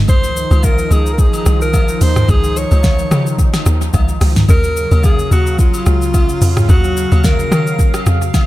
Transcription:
0.08 log drum bass C#2, analog synth pad D#3 F3 D#4, alto saxophone C5, kick, high agogo, shaker
0.24 shaker
0.37 shaker
0.51 log drum bass C#2, high agogo, shaker
0.63 alto saxophone A#4, kick, low woodblock, shaker
0.78 shaker
0.91 log drum bass C#2, alto saxophone G#4, high agogo, shaker
1.06 shaker
1.13 alto saxophone A#4
1.18 alto saxophone G#4, kick, shaker
1.33 high agogo, shaker
1.46 log drum bass C2, cross-stick, shaker
1.61 alto saxophone A#4, shaker
1.74 kick, high agogo, low woodblock, shaker
1.88 shaker
2.01 log drum bass D#2, alto saxophone C5, open hi-hat, shaker
2.16 cross-stick, mid tom, shaker
2.28 log drum bass C#2, alto saxophone G#4, kick, high agogo, shaker
2.44 shaker
2.57 alto saxophone C#5, shaker
2.71 log drum bass C#2, high agogo, shaker
2.83 kick, snare, low woodblock, shaker
2.99 shaker
3.11 log drum bass C#3, cross-stick, high agogo, shaker
3.27 shaker
3.39 kick, shaker
3.54 cross-stick, snare, high agogo, shaker
3.66 log drum bass D#2, cross-stick, shaker
3.81 shaker
3.93 log drum bass C#2, kick, high agogo, low woodblock, shaker
4.08 shaker
4.21 log drum bass C#2, cross-stick, open hi-hat, shaker
4.36 snare, mid tom, shaker
4.49 log drum bass D#2, analog synth pad C#3 F#3 F5, alto saxophone A#4, kick, high agogo, shaker
4.64 shaker
4.77 shaker
4.91 log drum bass D#2, high agogo, shaker
5.03 alto saxophone G#4, kick, low woodblock, shaker
5.19 shaker
5.31 log drum bass D#2, alto saxophone F#4, high agogo, shaker
5.47 shaker
5.59 alto saxophone F4, kick, shaker
5.74 high agogo, shaker
5.86 log drum bass C#2, cross-stick, shaker
6.02 shaker
6.14 kick, high agogo, low woodblock, shaker
6.29 shaker
6.41 log drum bass F2, open hi-hat, shaker
6.57 cross-stick, mid tom, shaker
6.69 log drum bass D#2, alto saxophone F#4, kick, high agogo, shaker
6.84 shaker
6.97 shaker
7.12 log drum bass D#2, high agogo, shaker
7.24 alto saxophone A#4, kick, snare, low woodblock, shaker
7.39 shaker
7.51 log drum bass D#3, cross-stick, high agogo, shaker
7.67 shaker
7.79 kick, shaker
7.94 cross-stick, high agogo, shaker
8.06 log drum bass F2, cross-stick, shaker
8.22 shaker
8.34 kick, snare, high agogo, low woodblock, shaker

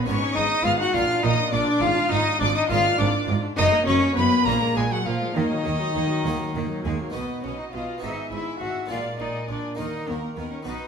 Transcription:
0.05 double bass section G#1, harpsichord G#2 B3 D#4 G#4, cello section G#2, viola section B3, cello C#4, violin section C#5 C#6
0.21 viola section D#4
0.34 double bass section G#1, harpsichord G#2, cello section G#2, viola section B3, cello D#4, violin section D#5 D#6
0.49 viola section D#4
0.64 double bass section G#1, harpsichord G#2, cello section G#2, viola section B3, cello F4, violin section F5 F6
0.79 viola section D#4, cello F#4, violin section F#5 F#6
0.93 double bass section A#1, cello section A#2, harpsichord A#2 A#3 D4 F4, cello F4, viola section F4, violin section F5 F6
1.09 viola section D4
1.23 double bass section A#1, cello section A#2, harpsichord A#2, cello D#4, viola section F4, violin section D#5 D#6
1.38 viola section D4
1.52 double bass section A#1, cello section A#2, harpsichord A#2, cello D4, viola section F4, violin section D5 D6
1.68 viola section D4
1.81 double bass section G#1, cello section G#2, harpsichord G#2, cello F4, viola section F4, violin section F5 F6
1.96 viola section D4
2.11 double bass section G#1, cello section G#2, harpsichord G#2, cello D#4, viola section F4, violin section D#5 D#6
2.27 viola section D4
2.40 double bass section G#1, cello section G#2, harpsichord G#2, cello D4, viola section F4, violin section D5 D6
2.54 viola section D4, cello D#4, violin section D#5 D#6
2.70 double bass section G#1, harpsichord G#2 A#3 D4 F4, cello section G#2, cello F4, viola section F4, violin section F5 F6
2.84 viola section D4
2.98 double bass section G#1, harpsichord G#2, cello section G#2, cello D4, viola section F4, violin section D5 D6
3.14 viola section D4
3.28 double bass section G#1, harpsichord G#2, cello section G#2, viola section F4
3.43 viola section D4
3.56 double bass section F#1, harpsichord F#2 A#3 D#4 F#4, cello section F#2, viola section F#3, cello D#4, violin section D#5 D#6
3.72 viola section A#3
3.86 double bass section F#1, harpsichord F#2, cello section F#2, viola section F#3, cello C#4, violin section C#5 C#6
4.00 viola section A#3
4.15 double bass section F#1, cello section F#2, harpsichord F#2, viola section F#3, cello B3, violin section B4 B5
4.31 viola section A#3
4.45 double bass section A#1, cello section A#2, harpsichord A#2 A#3 D4 G#4, cello A#3, viola section A#3, violin section A#4 A#5
4.60 viola section G#3
4.75 double bass section A#1, cello section A#2, harpsichord A#2, cello G#3, viola section A#3, violin section G#4 G#5
4.90 cello F#3, viola section G#3, violin section F#4 F#5
5.05 double bass section A#1, cello section A#2, harpsichord A#2, cello F3, viola section A#3, violin section F4 F5
5.20 viola section G#3
5.35 double bass section D#2, cello D#3, cello section D#3, harpsichord D#3, viola section A#3, violin section D#4 D#5
5.50 viola section F#3
5.65 double bass section D#2, harpsichord D#3, cello section D#3, viola section A#3
5.79 viola section F#3
5.94 double bass section D#2, harpsichord D#3, cello section D#3, viola section A#3
6.09 viola section F#3
6.24 double bass section D#2, cello section D#3, harpsichord D#3 A#3 D#4 F#4, viola section A#3
6.39 viola section F#3
6.54 double bass section D#2, cello section D#3, harpsichord D#3, viola section A#3
6.68 viola section F#3
6.84 double bass section D#2, harpsichord D#3, cello section D#3, cello G#3, viola section A#3, violin section G#4
6.99 viola section F#3, cello A#3, violin section A#4
7.10 harpsichord B3 D#4 F#4
7.14 double bass section B1, harpsichord B2, cello section B2, cello B3, violin section B4 F#5, viola section D#5
7.43 double bass section B1, harpsichord B2, cello section B2, cello C#4, violin section C#5 F#5, viola section D#5
7.58 cello D#4, violin section D#5
7.72 double bass section B1, harpsichord B2, cello section B2, cello F4, viola section D#5, violin section F5 F#5
7.98 harpsichord B3 E4
8.02 double bass section G#1, harpsichord G#2, cello section G#2, cello D#4, violin section D#5 G#5, viola section E5
8.31 double bass section G#1, cello section G#2, harpsichord G#2, cello E4, viola section E5, violin section E5 G#5
8.60 double bass section G#1, harpsichord G#2, cello section G#2, cello F#4, viola section E5, violin section F#5 G#5
8.86 harpsichord G#3 A#3 D4, viola section D5, violin section G#5
8.90 double bass section A#1, harpsichord A#2, cello section A#2, cello F4, violin section F5
9.18 double bass section A#1, harpsichord A#2, cello section A#2, cello D#4, viola section D5, violin section D#5 G#5
9.48 double bass section A#1, harpsichord A#2, cello section A#2, cello D4, viola section D5, violin section D5 G#5
9.75 double bass section D#2, harpsichord D#3 A#3 D#4, cello section D#3, cello D#4, viola section A#4, violin section D#5 F#5
10.08 double bass section D#2, harpsichord D#3, cello section D#3, cello A#3, viola section A#4, violin section A#4 F#5
10.36 double bass section D#2, harpsichord D#3, cello section D#3, cello B3, viola section A#4, violin section B4 F#5
10.51 cello C#4, violin section C#5
10.63 double bass section B1, harpsichord B2 B3 F#4, cello section B2, cello D#4, viola section B4, violin section F#5
10.67 violin section D#5

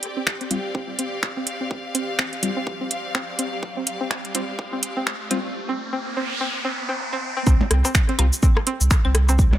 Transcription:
Already playing: string section C4 G4 D5 G5, riser
0.03 closed hi-hat
0.17 synth pluck C4
0.27 finger snap, kick
0.41 synth pluck C4, closed hi-hat
0.51 synth stab G3 C4 F4, string section F5, closed hi-hat
0.75 synth pluck C4, kick
0.99 synth pluck C4, closed hi-hat
1.23 finger snap, kick
1.37 synth pluck C4
1.47 closed hi-hat
1.61 synth pluck C4
1.71 kick
1.95 synth pluck C4, closed hi-hat
2.19 synth pluck C4, finger snap, kick
2.33 closed hi-hat
2.43 synth stab G3 C4 F4, closed hi-hat
2.57 synth pluck C4
2.67 kick
2.81 synth pluck C4
2.91 closed hi-hat
3.15 synth pluck C4, finger snap, kick
3.39 synth pluck C4, closed hi-hat
3.63 kick
3.77 synth pluck C4
3.87 closed hi-hat
4.01 synth pluck C4
4.11 finger snap, kick
4.25 closed hi-hat
4.35 synth stab G3 C4 F4, synth pluck C4, closed hi-hat
4.59 kick
4.73 synth pluck C4
4.83 closed hi-hat
4.97 synth pluck C4
5.07 finger snap, kick
5.31 synth stab G3 C4 F4, synth pluck C4, closed hi-hat
5.55 noise sweep
5.69 synth pluck C4
5.93 synth pluck C4
6.17 synth pluck C4
6.41 synth pluck C4
6.65 synth pluck C4
6.89 synth pluck C4
7.13 synth pluck C4
7.37 synth pluck C4
7.47 sub bass C2, synth pluck C4, kick, cabasa, percussion blips
7.61 percussion blips
7.71 sub bass C2, cross-stick, closed hi-hat
7.85 synth pluck C4, cabasa, percussion blips
7.95 finger snap, kick, cabasa
8.09 synth pluck C4, closed hi-hat
8.19 sub bass C2, synth stab G3 C4 F4, closed hi-hat, claves, percussion blips
8.33 cabasa
8.43 synth pluck C4, kick, cabasa
8.57 cross-stick, percussion blips
8.67 synth pluck C4, closed hi-hat
8.81 sub bass C2, cabasa
8.91 finger snap, kick, cabasa, percussion blips
9.05 sub bass C2, synth pluck C4, claves
9.15 cross-stick, closed hi-hat
9.29 synth pluck C4, cabasa, percussion blips
9.39 kick, cabasa
9.53 percussion blips

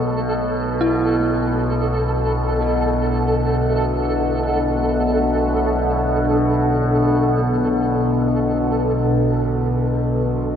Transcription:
Already playing: synth drone B1 B2, analog synth pad B2 D4 A4 E5 F#5, synth texture A4
0.81 synth bell E4

